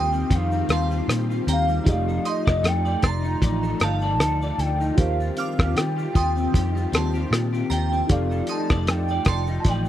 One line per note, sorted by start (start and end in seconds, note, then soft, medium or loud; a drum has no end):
0.00 0.23 D#2 medium
0.00 0.31 D#3 medium
0.00 1.83 D#3 medium
0.00 0.12 G3 medium
0.00 0.51 C4 medium
0.00 1.83 C4 medium
0.00 0.31 F4 medium
0.00 1.81 F4 medium
0.00 9.89 F4 medium
0.00 1.81 G4 medium
0.00 1.84 G4 medium
0.00 1.82 A#4 medium
0.00 1.83 C5 medium
0.00 0.36 G5 loud
0.00 0.30 C6 medium
0.00 0.30 D#6 medium
0.12 0.68 G3 medium
0.12 shaker medium
0.30 0.61 F2 loud
0.30 1.84 D#3 medium
0.30 0.91 F4 medium
0.30 kick loud
0.30 closed hi-hat medium
0.30 shaker medium
0.34 1.10 F5 medium
0.52 1.08 C4 medium
0.52 shaker medium
0.69 1.00 D#2 medium
0.69 1.68 G3 medium
0.69 1.08 A5 medium
0.69 1.08 C6 medium
0.69 cross-stick loud
0.69 closed hi-hat soft
0.69 shaker soft
0.91 1.30 F4 medium
0.91 shaker medium
1.08 1.39 A#2 medium
1.08 1.46 C4 medium
1.08 cross-stick medium
1.08 closed hi-hat medium
1.08 shaker medium
1.30 2.07 F4 medium
1.30 shaker medium
1.47 1.78 D#2 medium
1.47 2.24 C4 medium
1.47 1.69 G5 medium
1.47 1.68 A#5 medium
1.47 closed hi-hat medium
1.47 shaker medium
1.52 1.86 F5 loud
1.68 2.11 G3 medium
1.68 shaker medium
1.84 2.17 F1 loud
1.84 3.41 F3 medium
1.84 4.94 A3 medium
1.84 4.93 D#4 medium
1.84 4.95 D#4 medium
1.84 4.93 G4 medium
1.84 1.94 G#4 soft
1.84 2.44 D5 medium
1.84 kick loud
1.84 closed hi-hat medium
1.84 shaker medium
1.89 4.95 D#5 medium
1.89 2.25 F5 loud
1.94 4.97 A3 medium
2.08 2.62 A4 medium
2.08 shaker soft
2.25 3.23 D#4 medium
2.25 2.46 C6 medium
2.25 2.46 D#6 medium
2.25 closed hi-hat medium
2.25 shaker medium
2.29 2.68 D#5 loud
2.46 2.61 F1 medium
2.46 2.84 D5 medium
2.46 kick medium
2.46 cross-stick medium
2.46 shaker medium
2.63 2.95 F2 loud
2.63 3.02 A4 medium
2.63 3.08 G5 loud
2.63 cross-stick medium
2.63 closed hi-hat medium
2.63 shaker medium
2.85 3.41 D5 medium
2.85 shaker soft
3.03 3.34 F1 medium
3.03 3.83 A#5 loud
3.03 3.40 C6 medium
3.03 3.40 A6 medium
3.03 kick medium
3.03 cross-stick medium
3.03 closed hi-hat medium
3.03 shaker medium
3.24 3.81 D#4 medium
3.24 shaker medium
3.42 3.73 A1 loud
3.42 5.61 F3 medium
3.42 4.01 D5 medium
3.42 kick loud
3.42 closed hi-hat medium
3.42 shaker medium
3.63 4.20 A4 medium
3.63 shaker medium
3.80 4.20 G1 loud
3.80 4.80 D#4 medium
3.80 4.61 A5 loud
3.80 4.19 A5 medium
3.80 cross-stick loud
3.80 closed hi-hat medium
3.80 shaker medium
3.85 4.20 F5 medium
4.01 4.41 D5 medium
4.01 shaker medium
4.20 4.51 D2 medium
4.20 4.58 A4 medium
4.20 cross-stick medium
4.20 closed hi-hat medium
4.20 shaker medium
4.42 5.07 D5 medium
4.42 shaker medium
4.58 4.90 D2 medium
4.58 4.98 A4 medium
4.58 4.98 G5 loud
4.58 closed hi-hat medium
4.58 shaker medium
4.81 5.19 D#4 medium
4.81 shaker medium
4.95 5.29 D#2 loud
4.95 6.53 D#3 medium
4.95 8.07 D#3 medium
4.95 8.06 C4 medium
4.95 8.04 F4 medium
4.95 8.05 G4 medium
4.95 5.58 G4 medium
4.95 8.06 G4 medium
4.95 8.06 A#4 medium
4.95 5.34 F5 medium
4.95 kick loud
4.95 closed hi-hat medium
4.95 shaker medium
5.00 8.06 C5 medium
5.20 5.76 F4 medium
5.20 shaker medium
5.37 6.36 C4 medium
5.37 5.77 F5 loud
5.37 5.58 D6 medium
5.37 5.58 F6 medium
5.37 closed hi-hat medium
5.37 shaker medium
5.58 5.73 D#2 loud
5.58 5.96 G4 medium
5.58 kick medium
5.58 cross-stick medium
5.58 shaker medium
5.75 6.06 D#3 loud
5.75 6.13 F4 medium
5.75 7.31 G5 loud
5.75 cross-stick medium
5.75 closed hi-hat medium
5.75 shaker medium
5.96 6.54 G4 medium
5.96 shaker soft
6.13 6.46 D#2 medium
6.13 6.74 F4 medium
6.13 6.53 C6 medium
6.13 6.52 D#6 medium
6.13 kick medium
6.13 closed hi-hat medium
6.13 shaker soft
6.36 6.92 C4 medium
6.36 shaker medium
6.53 6.85 F2 loud
6.53 8.34 D#3 medium
6.53 7.13 G4 medium
6.53 kick medium
6.53 closed hi-hat medium
6.53 shaker medium
6.75 7.30 F4 medium
6.75 shaker medium
6.92 7.24 D#2 medium
6.92 7.91 C4 medium
6.92 7.31 A5 medium
6.92 7.30 C6 medium
6.92 cross-stick loud
6.92 closed hi-hat medium
6.92 shaker medium
7.14 7.52 G4 medium
7.14 shaker medium
7.31 7.62 A#2 medium
7.31 7.69 F4 medium
7.31 cross-stick medium
7.31 closed hi-hat medium
7.31 shaker medium
7.53 8.31 G4 medium
7.53 shaker medium
7.70 8.01 D#2 medium
7.70 8.48 F4 medium
7.70 7.91 G5 medium
7.70 8.12 G5 medium
7.70 7.90 A#5 medium
7.70 closed hi-hat medium
7.70 shaker medium
7.92 8.74 C4 medium
7.92 shaker medium
8.07 8.41 F1 medium
8.07 9.65 F3 medium
8.07 9.89 A3 medium
8.07 9.89 D#4 medium
8.07 9.89 G4 medium
8.07 9.89 A4 medium
8.07 8.70 D5 medium
8.07 8.49 F5 medium
8.07 kick loud
8.07 closed hi-hat medium
8.07 shaker medium
8.13 9.89 D5 medium
8.31 8.87 A4 medium
8.31 shaker soft
8.47 9.48 D#4 medium
8.47 8.70 C6 medium
8.47 8.69 D#6 medium
8.47 closed hi-hat medium
8.47 shaker medium
8.51 8.90 A5 loud
8.69 8.84 F1 medium
8.69 9.09 D5 medium
8.69 kick medium
8.69 cross-stick medium
8.69 shaker medium
8.87 9.18 F2 loud
8.87 9.27 A4 medium
8.87 9.60 G5 loud
8.87 cross-stick medium
8.87 closed hi-hat medium
8.87 shaker medium
9.08 9.65 D5 medium
9.08 shaker soft
9.25 9.57 F1 medium
9.25 9.86 A4 medium
9.25 9.64 C6 medium
9.25 kick medium
9.25 cross-stick medium
9.25 closed hi-hat medium
9.25 shaker medium
9.29 9.65 A5 medium
9.47 9.89 D#4 medium
9.47 shaker medium
9.60 9.70 A5 medium
9.65 9.89 A1 loud
9.65 9.89 F3 medium
9.65 9.89 D5 medium
9.65 kick medium
9.65 closed hi-hat medium
9.65 shaker medium
9.69 9.89 G5 loud
9.85 shaker medium